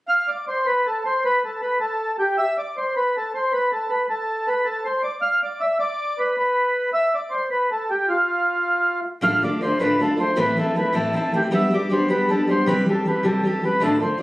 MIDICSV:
0, 0, Header, 1, 3, 480
1, 0, Start_track
1, 0, Tempo, 380952
1, 106, Time_signature, 6, 3, 24, 8
1, 17922, End_track
2, 0, Start_track
2, 0, Title_t, "Accordion"
2, 0, Program_c, 0, 21
2, 105, Note_on_c, 0, 77, 99
2, 355, Note_on_c, 0, 74, 72
2, 372, Note_off_c, 0, 77, 0
2, 574, Note_off_c, 0, 74, 0
2, 607, Note_on_c, 0, 72, 79
2, 830, Note_on_c, 0, 71, 88
2, 839, Note_off_c, 0, 72, 0
2, 1090, Note_on_c, 0, 69, 79
2, 1094, Note_off_c, 0, 71, 0
2, 1302, Note_off_c, 0, 69, 0
2, 1330, Note_on_c, 0, 72, 75
2, 1560, Note_off_c, 0, 72, 0
2, 1568, Note_on_c, 0, 71, 100
2, 1799, Note_off_c, 0, 71, 0
2, 1826, Note_on_c, 0, 69, 72
2, 2031, Note_off_c, 0, 69, 0
2, 2038, Note_on_c, 0, 71, 77
2, 2251, Note_off_c, 0, 71, 0
2, 2275, Note_on_c, 0, 69, 79
2, 2726, Note_off_c, 0, 69, 0
2, 2761, Note_on_c, 0, 67, 86
2, 2996, Note_off_c, 0, 67, 0
2, 2999, Note_on_c, 0, 76, 104
2, 3234, Note_off_c, 0, 76, 0
2, 3252, Note_on_c, 0, 74, 81
2, 3486, Note_off_c, 0, 74, 0
2, 3494, Note_on_c, 0, 72, 67
2, 3722, Note_off_c, 0, 72, 0
2, 3734, Note_on_c, 0, 71, 79
2, 3986, Note_off_c, 0, 71, 0
2, 3997, Note_on_c, 0, 69, 75
2, 4197, Note_off_c, 0, 69, 0
2, 4220, Note_on_c, 0, 72, 69
2, 4443, Note_on_c, 0, 71, 83
2, 4445, Note_off_c, 0, 72, 0
2, 4675, Note_off_c, 0, 71, 0
2, 4686, Note_on_c, 0, 69, 68
2, 4908, Note_on_c, 0, 71, 67
2, 4923, Note_off_c, 0, 69, 0
2, 5126, Note_off_c, 0, 71, 0
2, 5163, Note_on_c, 0, 69, 78
2, 5639, Note_on_c, 0, 71, 81
2, 5658, Note_off_c, 0, 69, 0
2, 5859, Note_on_c, 0, 69, 81
2, 5875, Note_off_c, 0, 71, 0
2, 6111, Note_on_c, 0, 72, 68
2, 6129, Note_off_c, 0, 69, 0
2, 6331, Note_off_c, 0, 72, 0
2, 6338, Note_on_c, 0, 74, 80
2, 6560, Note_off_c, 0, 74, 0
2, 6575, Note_on_c, 0, 77, 81
2, 6820, Note_off_c, 0, 77, 0
2, 6841, Note_on_c, 0, 74, 76
2, 7064, Note_on_c, 0, 76, 83
2, 7080, Note_off_c, 0, 74, 0
2, 7283, Note_off_c, 0, 76, 0
2, 7298, Note_on_c, 0, 74, 98
2, 7798, Note_on_c, 0, 71, 76
2, 7805, Note_off_c, 0, 74, 0
2, 8012, Note_off_c, 0, 71, 0
2, 8031, Note_on_c, 0, 71, 72
2, 8696, Note_off_c, 0, 71, 0
2, 8741, Note_on_c, 0, 76, 102
2, 9002, Note_on_c, 0, 74, 69
2, 9007, Note_off_c, 0, 76, 0
2, 9207, Note_on_c, 0, 72, 66
2, 9239, Note_off_c, 0, 74, 0
2, 9433, Note_off_c, 0, 72, 0
2, 9458, Note_on_c, 0, 71, 67
2, 9700, Note_off_c, 0, 71, 0
2, 9722, Note_on_c, 0, 69, 70
2, 9958, Note_off_c, 0, 69, 0
2, 9959, Note_on_c, 0, 67, 72
2, 10189, Note_on_c, 0, 65, 86
2, 10192, Note_off_c, 0, 67, 0
2, 11343, Note_off_c, 0, 65, 0
2, 11637, Note_on_c, 0, 77, 105
2, 11869, Note_off_c, 0, 77, 0
2, 11896, Note_on_c, 0, 74, 82
2, 12102, Note_off_c, 0, 74, 0
2, 12124, Note_on_c, 0, 72, 84
2, 12331, Note_off_c, 0, 72, 0
2, 12349, Note_on_c, 0, 71, 87
2, 12610, Note_off_c, 0, 71, 0
2, 12614, Note_on_c, 0, 69, 78
2, 12843, Note_off_c, 0, 69, 0
2, 12858, Note_on_c, 0, 72, 90
2, 13080, Note_off_c, 0, 72, 0
2, 13097, Note_on_c, 0, 71, 109
2, 13320, Note_off_c, 0, 71, 0
2, 13353, Note_on_c, 0, 69, 80
2, 13551, Note_off_c, 0, 69, 0
2, 13580, Note_on_c, 0, 71, 83
2, 13780, Note_off_c, 0, 71, 0
2, 13811, Note_on_c, 0, 69, 79
2, 14048, Note_off_c, 0, 69, 0
2, 14067, Note_on_c, 0, 69, 76
2, 14268, Note_off_c, 0, 69, 0
2, 14311, Note_on_c, 0, 67, 76
2, 14405, Note_off_c, 0, 67, 0
2, 14540, Note_on_c, 0, 76, 99
2, 14786, Note_off_c, 0, 76, 0
2, 14787, Note_on_c, 0, 74, 84
2, 14989, Note_off_c, 0, 74, 0
2, 15029, Note_on_c, 0, 72, 78
2, 15225, Note_off_c, 0, 72, 0
2, 15248, Note_on_c, 0, 71, 92
2, 15500, Note_off_c, 0, 71, 0
2, 15506, Note_on_c, 0, 69, 84
2, 15730, Note_off_c, 0, 69, 0
2, 15753, Note_on_c, 0, 72, 89
2, 15969, Note_off_c, 0, 72, 0
2, 15971, Note_on_c, 0, 71, 99
2, 16198, Note_off_c, 0, 71, 0
2, 16259, Note_on_c, 0, 69, 72
2, 16467, Note_off_c, 0, 69, 0
2, 16486, Note_on_c, 0, 71, 65
2, 16676, Note_off_c, 0, 71, 0
2, 16705, Note_on_c, 0, 69, 76
2, 17189, Note_off_c, 0, 69, 0
2, 17199, Note_on_c, 0, 71, 89
2, 17413, Note_off_c, 0, 71, 0
2, 17424, Note_on_c, 0, 69, 100
2, 17647, Note_off_c, 0, 69, 0
2, 17674, Note_on_c, 0, 72, 74
2, 17875, Note_off_c, 0, 72, 0
2, 17922, End_track
3, 0, Start_track
3, 0, Title_t, "Steel-string acoustic guitar"
3, 0, Program_c, 1, 25
3, 11606, Note_on_c, 1, 38, 72
3, 11617, Note_on_c, 1, 45, 69
3, 11619, Note_on_c, 1, 50, 76
3, 11626, Note_on_c, 1, 57, 68
3, 11627, Note_on_c, 1, 62, 77
3, 11633, Note_on_c, 1, 65, 68
3, 11856, Note_off_c, 1, 50, 0
3, 11868, Note_off_c, 1, 57, 0
3, 11871, Note_off_c, 1, 38, 0
3, 11871, Note_on_c, 1, 50, 49
3, 11877, Note_off_c, 1, 45, 0
3, 11882, Note_off_c, 1, 62, 0
3, 11883, Note_on_c, 1, 57, 55
3, 11885, Note_off_c, 1, 65, 0
3, 11898, Note_on_c, 1, 62, 60
3, 11908, Note_on_c, 1, 65, 54
3, 12090, Note_off_c, 1, 50, 0
3, 12105, Note_on_c, 1, 50, 48
3, 12106, Note_off_c, 1, 57, 0
3, 12119, Note_off_c, 1, 62, 0
3, 12121, Note_on_c, 1, 57, 50
3, 12123, Note_off_c, 1, 65, 0
3, 12136, Note_on_c, 1, 62, 51
3, 12144, Note_on_c, 1, 65, 55
3, 12336, Note_on_c, 1, 38, 61
3, 12338, Note_off_c, 1, 50, 0
3, 12342, Note_off_c, 1, 57, 0
3, 12344, Note_on_c, 1, 45, 63
3, 12345, Note_off_c, 1, 62, 0
3, 12351, Note_on_c, 1, 50, 63
3, 12352, Note_off_c, 1, 65, 0
3, 12357, Note_on_c, 1, 57, 61
3, 12360, Note_on_c, 1, 62, 62
3, 12367, Note_on_c, 1, 65, 72
3, 12571, Note_off_c, 1, 50, 0
3, 12584, Note_off_c, 1, 57, 0
3, 12586, Note_on_c, 1, 50, 48
3, 12596, Note_off_c, 1, 38, 0
3, 12599, Note_on_c, 1, 57, 57
3, 12600, Note_off_c, 1, 45, 0
3, 12602, Note_off_c, 1, 62, 0
3, 12612, Note_off_c, 1, 65, 0
3, 12617, Note_on_c, 1, 62, 61
3, 12630, Note_on_c, 1, 65, 60
3, 12794, Note_off_c, 1, 50, 0
3, 12809, Note_off_c, 1, 57, 0
3, 12809, Note_on_c, 1, 50, 43
3, 12823, Note_off_c, 1, 62, 0
3, 12824, Note_on_c, 1, 57, 46
3, 12836, Note_off_c, 1, 65, 0
3, 12838, Note_on_c, 1, 62, 46
3, 12851, Note_on_c, 1, 65, 48
3, 13049, Note_off_c, 1, 50, 0
3, 13053, Note_on_c, 1, 45, 68
3, 13054, Note_off_c, 1, 57, 0
3, 13061, Note_on_c, 1, 52, 82
3, 13064, Note_off_c, 1, 62, 0
3, 13065, Note_on_c, 1, 60, 76
3, 13069, Note_on_c, 1, 57, 75
3, 13070, Note_off_c, 1, 65, 0
3, 13083, Note_on_c, 1, 64, 84
3, 13294, Note_off_c, 1, 52, 0
3, 13306, Note_off_c, 1, 60, 0
3, 13309, Note_on_c, 1, 52, 51
3, 13314, Note_off_c, 1, 45, 0
3, 13322, Note_off_c, 1, 57, 0
3, 13322, Note_on_c, 1, 60, 55
3, 13330, Note_off_c, 1, 64, 0
3, 13338, Note_on_c, 1, 57, 60
3, 13349, Note_on_c, 1, 64, 58
3, 13526, Note_off_c, 1, 52, 0
3, 13541, Note_on_c, 1, 52, 51
3, 13544, Note_off_c, 1, 60, 0
3, 13558, Note_off_c, 1, 57, 0
3, 13560, Note_on_c, 1, 60, 46
3, 13564, Note_off_c, 1, 64, 0
3, 13572, Note_on_c, 1, 57, 55
3, 13586, Note_on_c, 1, 64, 53
3, 13761, Note_off_c, 1, 52, 0
3, 13766, Note_off_c, 1, 60, 0
3, 13767, Note_on_c, 1, 45, 64
3, 13773, Note_off_c, 1, 57, 0
3, 13776, Note_on_c, 1, 52, 61
3, 13781, Note_on_c, 1, 60, 63
3, 13782, Note_off_c, 1, 64, 0
3, 13788, Note_on_c, 1, 57, 64
3, 13797, Note_on_c, 1, 64, 76
3, 14008, Note_off_c, 1, 52, 0
3, 14023, Note_on_c, 1, 52, 57
3, 14024, Note_off_c, 1, 60, 0
3, 14032, Note_off_c, 1, 45, 0
3, 14035, Note_off_c, 1, 57, 0
3, 14039, Note_on_c, 1, 60, 54
3, 14047, Note_off_c, 1, 64, 0
3, 14050, Note_on_c, 1, 57, 59
3, 14067, Note_on_c, 1, 64, 72
3, 14247, Note_off_c, 1, 52, 0
3, 14262, Note_on_c, 1, 52, 50
3, 14269, Note_off_c, 1, 60, 0
3, 14275, Note_off_c, 1, 57, 0
3, 14283, Note_off_c, 1, 64, 0
3, 14284, Note_on_c, 1, 60, 54
3, 14293, Note_on_c, 1, 57, 50
3, 14302, Note_on_c, 1, 64, 48
3, 14496, Note_off_c, 1, 52, 0
3, 14501, Note_on_c, 1, 55, 67
3, 14507, Note_off_c, 1, 60, 0
3, 14512, Note_off_c, 1, 57, 0
3, 14513, Note_on_c, 1, 59, 77
3, 14516, Note_off_c, 1, 64, 0
3, 14517, Note_on_c, 1, 62, 65
3, 14530, Note_on_c, 1, 67, 70
3, 14736, Note_off_c, 1, 55, 0
3, 14751, Note_on_c, 1, 55, 53
3, 14758, Note_off_c, 1, 59, 0
3, 14767, Note_off_c, 1, 62, 0
3, 14773, Note_on_c, 1, 59, 52
3, 14774, Note_off_c, 1, 67, 0
3, 14785, Note_on_c, 1, 62, 65
3, 14794, Note_on_c, 1, 67, 66
3, 14975, Note_off_c, 1, 55, 0
3, 14989, Note_off_c, 1, 59, 0
3, 14990, Note_on_c, 1, 55, 55
3, 14998, Note_off_c, 1, 62, 0
3, 15004, Note_on_c, 1, 59, 59
3, 15007, Note_off_c, 1, 67, 0
3, 15013, Note_on_c, 1, 62, 61
3, 15030, Note_on_c, 1, 67, 57
3, 15209, Note_off_c, 1, 55, 0
3, 15225, Note_on_c, 1, 55, 57
3, 15228, Note_off_c, 1, 59, 0
3, 15232, Note_off_c, 1, 62, 0
3, 15240, Note_on_c, 1, 59, 72
3, 15241, Note_off_c, 1, 67, 0
3, 15250, Note_on_c, 1, 62, 75
3, 15254, Note_on_c, 1, 67, 68
3, 15467, Note_off_c, 1, 55, 0
3, 15482, Note_off_c, 1, 59, 0
3, 15482, Note_on_c, 1, 55, 63
3, 15494, Note_off_c, 1, 62, 0
3, 15496, Note_off_c, 1, 67, 0
3, 15497, Note_on_c, 1, 59, 55
3, 15510, Note_on_c, 1, 62, 60
3, 15517, Note_on_c, 1, 67, 55
3, 15703, Note_off_c, 1, 55, 0
3, 15718, Note_on_c, 1, 55, 41
3, 15719, Note_off_c, 1, 59, 0
3, 15725, Note_off_c, 1, 62, 0
3, 15729, Note_off_c, 1, 67, 0
3, 15738, Note_on_c, 1, 59, 46
3, 15749, Note_on_c, 1, 62, 47
3, 15766, Note_on_c, 1, 67, 49
3, 15945, Note_off_c, 1, 55, 0
3, 15955, Note_off_c, 1, 59, 0
3, 15956, Note_on_c, 1, 48, 79
3, 15960, Note_off_c, 1, 62, 0
3, 15967, Note_on_c, 1, 52, 76
3, 15967, Note_on_c, 1, 55, 84
3, 15969, Note_off_c, 1, 67, 0
3, 15980, Note_on_c, 1, 60, 92
3, 15985, Note_on_c, 1, 67, 83
3, 16190, Note_off_c, 1, 52, 0
3, 16205, Note_on_c, 1, 52, 51
3, 16208, Note_off_c, 1, 48, 0
3, 16209, Note_off_c, 1, 55, 0
3, 16220, Note_off_c, 1, 60, 0
3, 16222, Note_off_c, 1, 67, 0
3, 16224, Note_on_c, 1, 55, 49
3, 16240, Note_on_c, 1, 60, 65
3, 16250, Note_on_c, 1, 67, 56
3, 16431, Note_off_c, 1, 52, 0
3, 16440, Note_off_c, 1, 55, 0
3, 16446, Note_on_c, 1, 52, 50
3, 16451, Note_off_c, 1, 60, 0
3, 16455, Note_on_c, 1, 55, 53
3, 16456, Note_off_c, 1, 67, 0
3, 16471, Note_on_c, 1, 60, 59
3, 16484, Note_on_c, 1, 67, 50
3, 16670, Note_off_c, 1, 52, 0
3, 16672, Note_on_c, 1, 48, 62
3, 16674, Note_off_c, 1, 55, 0
3, 16683, Note_off_c, 1, 60, 0
3, 16683, Note_on_c, 1, 52, 61
3, 16688, Note_on_c, 1, 55, 63
3, 16689, Note_off_c, 1, 67, 0
3, 16696, Note_on_c, 1, 60, 67
3, 16705, Note_on_c, 1, 67, 62
3, 16911, Note_off_c, 1, 52, 0
3, 16926, Note_on_c, 1, 52, 60
3, 16927, Note_off_c, 1, 48, 0
3, 16931, Note_off_c, 1, 55, 0
3, 16938, Note_off_c, 1, 60, 0
3, 16943, Note_off_c, 1, 67, 0
3, 16947, Note_on_c, 1, 55, 56
3, 16955, Note_on_c, 1, 60, 55
3, 16970, Note_on_c, 1, 67, 65
3, 17146, Note_off_c, 1, 52, 0
3, 17161, Note_on_c, 1, 52, 40
3, 17162, Note_off_c, 1, 55, 0
3, 17170, Note_off_c, 1, 60, 0
3, 17177, Note_off_c, 1, 67, 0
3, 17178, Note_on_c, 1, 55, 45
3, 17192, Note_on_c, 1, 60, 44
3, 17204, Note_on_c, 1, 67, 53
3, 17388, Note_off_c, 1, 52, 0
3, 17388, Note_on_c, 1, 38, 76
3, 17397, Note_off_c, 1, 55, 0
3, 17397, Note_on_c, 1, 45, 78
3, 17404, Note_off_c, 1, 60, 0
3, 17406, Note_on_c, 1, 50, 72
3, 17408, Note_on_c, 1, 57, 67
3, 17410, Note_off_c, 1, 67, 0
3, 17416, Note_on_c, 1, 62, 84
3, 17418, Note_on_c, 1, 65, 72
3, 17625, Note_off_c, 1, 50, 0
3, 17636, Note_off_c, 1, 57, 0
3, 17640, Note_on_c, 1, 50, 48
3, 17646, Note_off_c, 1, 38, 0
3, 17650, Note_off_c, 1, 45, 0
3, 17651, Note_off_c, 1, 62, 0
3, 17651, Note_on_c, 1, 57, 44
3, 17661, Note_off_c, 1, 65, 0
3, 17666, Note_on_c, 1, 62, 55
3, 17679, Note_on_c, 1, 65, 55
3, 17846, Note_off_c, 1, 50, 0
3, 17860, Note_off_c, 1, 57, 0
3, 17862, Note_on_c, 1, 50, 43
3, 17876, Note_on_c, 1, 57, 51
3, 17882, Note_off_c, 1, 62, 0
3, 17893, Note_off_c, 1, 65, 0
3, 17922, Note_off_c, 1, 50, 0
3, 17922, Note_off_c, 1, 57, 0
3, 17922, End_track
0, 0, End_of_file